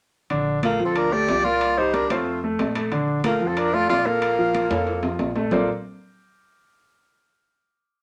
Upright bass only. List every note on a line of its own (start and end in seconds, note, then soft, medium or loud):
0.30 0.76 A#1 medium
0.79 1.25 D2 medium
1.28 2.04 C2 medium
2.10 2.56 F2 medium
2.59 3.35 A#1 medium
3.40 3.86 F2 medium
3.89 4.65 A#1 medium
4.70 5.16 F2 medium
5.19 5.48 A#1 medium
5.52 5.67 A#1 medium